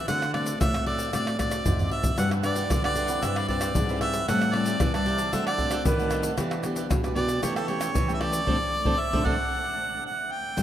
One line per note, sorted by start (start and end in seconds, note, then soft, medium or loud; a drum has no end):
0.08 0.53 D3 loud
0.08 0.58 D3 medium
0.08 0.24 A3 medium
0.08 0.24 C4 medium
0.08 0.24 F#4 medium
0.08 0.33 F#5 loud
0.08 pandeiro medium
0.08 tamborim medium
0.08 shaker medium
0.08 surdo medium
0.22 pandeiro soft
0.22 tamborim medium
0.22 shaker soft
0.33 0.59 A3 medium
0.33 0.59 C4 medium
0.33 0.59 F#4 medium
0.33 0.58 D5 medium
0.33 pandeiro medium
0.33 tamborim medium
0.46 pandeiro medium
0.46 shaker medium
0.60 0.72 A2 loud
0.60 0.85 E5 loud
0.60 pandeiro medium
0.60 tamborim medium
0.60 shaker medium
0.60 surdo loud
0.74 0.85 A2 medium
0.74 1.09 A3 medium
0.74 1.10 C4 soft
0.74 1.10 F#4 medium
0.74 pandeiro soft
0.74 tamborim medium
0.74 shaker soft
0.86 1.09 A2 loud
0.86 1.11 D5 medium
0.86 pandeiro medium
0.99 pandeiro medium
0.99 shaker medium
1.13 1.58 A2 medium
1.13 1.63 D3 medium
1.13 1.35 A3 medium
1.13 1.35 C4 medium
1.13 1.36 F#4 medium
1.13 1.38 D5 medium
1.13 pandeiro medium
1.13 tamborim medium
1.13 shaker medium
1.13 surdo medium
1.27 pandeiro soft
1.27 tamborim medium
1.27 shaker soft
1.39 1.74 A3 medium
1.39 1.75 C4 medium
1.39 1.75 F#4 medium
1.39 1.88 D5 medium
1.39 pandeiro medium
1.39 tamborim medium
1.39 shaker medium
1.39 surdo medium
1.51 pandeiro medium
1.51 tamborim medium
1.51 shaker medium
1.66 2.11 G#2 loud
1.66 surdo medium
1.66 pandeiro medium
1.66 shaker medium
1.66 surdo medium
1.79 2.15 C4 medium
1.79 2.15 F#4 medium
1.79 surdo medium
1.79 pandeiro soft
1.79 shaker soft
1.91 2.16 E5 medium
1.91 pandeiro medium
2.04 pandeiro medium
2.04 shaker medium
2.04 surdo loud
2.18 2.63 G2 medium
2.18 2.68 G3 medium
2.18 2.42 D4 medium
2.18 2.34 D4 medium
2.18 2.34 F#4 medium
2.18 2.43 G4 medium
2.18 2.43 B4 medium
2.18 2.34 B4 medium
2.18 2.30 F#5 loud
2.18 2.44 F#5 medium
2.18 pandeiro medium
2.18 tamborim medium
2.18 shaker medium
2.18 surdo medium
2.31 pandeiro soft
2.31 tamborim medium
2.31 shaker soft
2.43 2.55 D4 soft
2.43 2.69 D4 medium
2.43 2.69 F#4 medium
2.43 2.55 G4 soft
2.43 2.56 B4 soft
2.43 2.69 B4 medium
2.43 2.81 D5 loud
2.43 2.56 F#5 medium
2.43 pandeiro soft
2.43 tamborim medium
2.43 shaker medium
2.56 2.66 D4 medium
2.56 2.66 G4 medium
2.56 2.66 B4 medium
2.56 2.66 F#5 medium
2.56 pandeiro medium
2.56 shaker medium
2.70 3.21 D3 medium
2.70 2.82 D3 medium
2.70 pandeiro medium
2.70 tamborim medium
2.70 shaker medium
2.70 surdo loud
2.84 2.95 D3 medium
2.84 3.06 D4 medium
2.84 3.07 F#4 medium
2.84 2.95 G4 soft
2.84 2.96 B4 soft
2.84 3.07 B4 medium
2.84 3.25 D5 loud
2.84 2.96 F#5 soft
2.84 pandeiro soft
2.84 tamborim medium
2.84 shaker soft
2.95 3.19 D3 loud
2.95 3.09 D4 medium
2.95 3.09 G4 medium
2.95 3.08 B4 medium
2.95 3.08 F#5 medium
2.95 pandeiro medium
2.95 shaker medium
3.08 3.45 C4 medium
3.08 3.45 E4 medium
3.08 3.22 G4 soft
3.08 3.22 B4 soft
3.08 3.45 B4 medium
3.08 3.22 F#5 soft
3.08 pandeiro medium
3.08 shaker medium
3.23 3.68 G2 medium
3.23 3.73 G3 medium
3.23 3.35 G4 medium
3.23 3.36 B4 medium
3.23 3.36 C5 medium
3.23 3.39 E5 medium
3.23 3.36 E5 medium
3.23 pandeiro medium
3.23 tamborim medium
3.23 shaker medium
3.23 surdo medium
3.36 3.49 B4 soft
3.36 3.48 C5 soft
3.36 3.48 D5 medium
3.36 3.49 E5 medium
3.36 pandeiro soft
3.36 tamborim medium
3.36 shaker soft
3.48 3.74 C4 medium
3.48 3.74 E4 medium
3.48 3.60 G4 soft
3.48 3.74 B4 medium
3.48 3.61 B4 medium
3.48 3.60 C5 medium
3.48 3.98 D5 medium
3.48 3.61 E5 medium
3.48 pandeiro medium
3.48 surdo medium
3.61 3.71 G4 medium
3.61 3.71 B4 medium
3.61 3.71 C5 medium
3.61 3.71 E5 medium
3.61 pandeiro medium
3.61 tamborim medium
3.61 shaker medium
3.75 4.20 G#2 medium
3.75 4.26 G3 soft
3.75 pandeiro medium
3.75 shaker medium
3.75 surdo loud
3.89 4.24 C4 medium
3.89 4.25 E4 medium
3.89 4.01 B4 soft
3.89 4.25 B4 medium
3.89 4.00 C5 soft
3.89 4.01 E5 soft
3.89 pandeiro soft
3.89 shaker soft
4.01 4.27 G4 medium
4.01 4.27 B4 medium
4.01 4.27 C5 medium
4.01 4.26 E5 loud
4.01 4.28 E5 medium
4.01 pandeiro medium
4.01 tamborim medium
4.14 pandeiro medium
4.14 shaker medium
4.28 4.78 A2 medium
4.28 4.73 A2 loud
4.28 4.50 G3 medium
4.28 4.51 C4 medium
4.28 4.51 E4 medium
4.28 4.52 G4 medium
4.28 4.53 C5 medium
4.28 4.53 E5 medium
4.28 4.55 F#5 loud
4.28 4.54 A5 medium
4.28 pandeiro medium
4.28 tamborim medium
4.28 shaker medium
4.28 surdo medium
4.41 pandeiro soft
4.41 tamborim medium
4.41 shaker soft
4.53 4.89 G3 medium
4.53 4.90 C4 medium
4.53 4.90 E4 medium
4.53 4.65 G4 soft
4.53 4.65 C5 soft
4.53 4.93 D5 medium
4.53 4.66 E5 medium
4.53 4.66 A5 medium
4.53 pandeiro medium
4.53 tamborim medium
4.66 4.76 G4 medium
4.66 4.76 C5 medium
4.66 4.76 E5 medium
4.66 4.76 A5 medium
4.66 pandeiro medium
4.66 shaker medium
4.80 4.92 E3 loud
4.80 5.31 E3 soft
4.80 pandeiro medium
4.80 tamborim medium
4.80 shaker medium
4.80 surdo loud
4.94 5.05 E3 medium
4.94 5.29 G3 medium
4.94 5.30 C4 soft
4.94 5.30 E4 medium
4.94 5.05 C5 soft
4.94 5.35 D5 loud
4.94 5.06 E5 soft
4.94 5.06 A5 soft
4.94 pandeiro soft
4.94 tamborim medium
4.94 shaker soft
5.06 5.29 C3 medium
5.06 5.18 G4 medium
5.06 5.19 C5 medium
5.06 5.18 E5 medium
5.06 5.17 A5 medium
5.06 pandeiro medium
5.18 5.32 C5 soft
5.18 5.32 E5 soft
5.18 5.31 A5 soft
5.18 pandeiro medium
5.18 shaker medium
5.33 5.78 D3 medium
5.33 5.83 D3 medium
5.33 5.49 A3 medium
5.33 5.49 C4 medium
5.33 5.45 D4 medium
5.33 5.49 F#4 medium
5.33 5.46 A4 medium
5.33 5.46 C5 medium
5.33 5.46 E5 medium
5.33 5.45 F#5 medium
5.33 pandeiro medium
5.33 tamborim medium
5.33 shaker medium
5.33 surdo medium
5.47 5.58 A4 soft
5.47 5.58 C5 soft
5.47 5.83 D5 loud
5.47 5.58 F#5 medium
5.47 pandeiro soft
5.47 tamborim medium
5.47 shaker soft
5.58 5.84 A3 medium
5.58 5.84 C4 medium
5.58 5.70 D4 soft
5.58 5.84 F#4 medium
5.58 5.70 A4 soft
5.58 5.71 C5 medium
5.58 5.71 F#5 medium
5.58 pandeiro medium
5.58 surdo medium
5.71 5.81 D4 medium
5.71 5.81 A4 medium
5.71 5.81 C5 medium
5.71 5.81 F#5 medium
5.71 pandeiro medium
5.71 tamborim medium
5.71 shaker medium
5.85 6.36 A2 medium
5.85 6.30 D#3 loud
5.85 6.22 B4 medium
5.85 pandeiro medium
5.85 shaker medium
5.85 surdo loud
5.99 6.35 A3 medium
5.99 6.35 C4 medium
5.99 6.35 F#4 medium
5.99 6.11 A4 soft
5.99 6.11 C5 soft
5.99 6.11 F#5 soft
5.99 pandeiro soft
5.99 shaker soft
6.11 6.37 D4 medium
6.11 6.37 A4 medium
6.11 6.37 C5 medium
6.11 6.37 F#5 medium
6.11 pandeiro medium
6.11 tamborim medium
6.11 shaker medium
6.23 pandeiro medium
6.23 shaker medium
6.38 6.82 E3 loud
6.38 6.88 E3 medium
6.38 6.54 B3 medium
6.38 6.54 D4 medium
6.38 6.62 E4 medium
6.38 6.63 G4 medium
6.38 6.54 G4 medium
6.38 6.64 B4 medium
6.38 6.64 D5 medium
6.38 pandeiro medium
6.38 tamborim medium
6.38 shaker medium
6.38 surdo medium
6.51 pandeiro soft
6.51 tamborim medium
6.51 shaker soft
6.63 6.99 B3 medium
6.63 7.00 D4 medium
6.63 6.75 E4 soft
6.63 6.75 G4 medium
6.63 7.00 G4 medium
6.63 6.76 B4 medium
6.63 6.76 D5 soft
6.63 pandeiro medium
6.63 tamborim medium
6.63 shaker medium
6.76 6.86 E4 medium
6.76 6.86 G4 medium
6.76 6.86 B4 medium
6.76 6.86 D5 medium
6.76 pandeiro medium
6.76 shaker medium
6.90 7.01 B2 medium
6.90 7.40 B2 medium
6.90 pandeiro medium
6.90 tamborim medium
6.90 shaker medium
6.90 surdo loud
7.03 7.14 B2 medium
7.03 7.39 B3 medium
7.03 7.39 D4 medium
7.03 7.40 G4 medium
7.03 7.16 G4 soft
7.03 7.16 B4 medium
7.03 7.16 D5 soft
7.03 pandeiro soft
7.03 tamborim medium
7.03 shaker soft
7.16 7.38 B2 loud
7.16 7.28 E4 medium
7.16 7.29 G4 medium
7.16 7.28 B4 medium
7.16 7.40 D5 medium
7.16 7.27 D5 medium
7.16 pandeiro medium
7.28 7.41 G4 soft
7.28 7.41 B4 soft
7.28 7.41 D5 soft
7.28 pandeiro medium
7.28 shaker medium
7.43 7.87 E3 medium
7.43 7.93 E3 medium
7.43 7.58 A3 medium
7.43 7.59 C#4 soft
7.43 7.55 G4 medium
7.43 7.59 G4 medium
7.43 7.55 A4 medium
7.43 7.55 C#5 medium
7.43 7.55 G5 medium
7.43 pandeiro medium
7.43 tamborim medium
7.43 shaker medium
7.43 surdo medium
7.56 7.70 A4 medium
7.56 7.68 A4 soft
7.56 7.68 C#5 soft
7.56 7.68 G5 medium
7.56 pandeiro soft
7.56 tamborim medium
7.56 shaker soft
7.68 7.93 A3 medium
7.68 7.94 C#4 medium
7.68 7.79 G4 medium
7.68 7.94 G4 medium
7.68 7.80 A4 medium
7.68 8.13 C#5 medium
7.68 7.80 C#5 medium
7.68 7.80 G5 medium
7.68 pandeiro medium
7.81 7.90 G4 medium
7.81 7.90 A4 medium
7.81 7.91 C#5 medium
7.81 7.91 G5 medium
7.81 pandeiro medium
7.81 tamborim medium
7.81 shaker medium
7.94 8.39 E3 loud
7.94 8.45 E3 medium
7.94 pandeiro medium
7.94 shaker medium
7.94 surdo loud
8.08 8.44 A3 medium
8.08 8.44 C#4 medium
8.08 8.44 G4 medium
8.08 8.20 A4 soft
8.08 8.21 C#5 soft
8.08 8.20 G5 soft
8.08 pandeiro soft
8.08 shaker soft
8.14 8.22 E5 medium
8.20 8.46 G4 medium
8.20 8.46 A4 medium
8.20 8.47 C#5 medium
8.20 9.02 D5 loud
8.20 8.47 G5 medium
8.20 pandeiro medium
8.20 tamborim medium
8.33 pandeiro medium
8.33 shaker medium
8.47 8.57 D3 loud
8.47 8.56 A3 loud
8.47 8.56 C4 medium
8.47 8.56 D4 loud
8.47 8.56 A4 loud
8.47 8.56 C5 medium
8.47 8.56 D5 medium
8.47 surdo loud
8.85 8.96 D3 medium
8.85 8.95 A3 loud
8.85 8.95 C4 loud
8.85 8.95 D4 loud
8.85 8.94 A4 medium
8.85 8.94 C5 medium
8.85 8.94 D5 medium
8.85 surdo loud
9.00 9.27 E5 loud
9.13 9.23 D3 medium
9.13 9.22 A3 medium
9.13 9.22 C4 medium
9.13 9.22 D4 medium
9.13 9.22 A4 medium
9.13 9.21 C5 loud
9.13 9.22 D5 medium
9.13 surdo loud
9.25 9.36 D3 medium
9.25 9.34 A3 medium
9.25 9.34 C4 medium
9.25 9.34 D4 medium
9.25 9.34 A4 medium
9.25 9.34 C5 medium
9.25 9.34 D5 loud
9.25 10.05 F#5 loud
9.25 surdo loud
10.06 10.33 F#5 medium
10.31 10.63 G5 loud
10.57 10.63 G2 loud
10.57 10.63 G3 medium
10.57 10.63 D4 medium
10.57 10.63 F4 soft
10.57 10.63 F4 medium
10.57 10.63 A#4 soft
10.57 10.63 A#4 medium
10.57 10.63 D5 soft
10.57 10.63 G5 medium
10.57 pandeiro medium
10.57 shaker medium
10.57 surdo medium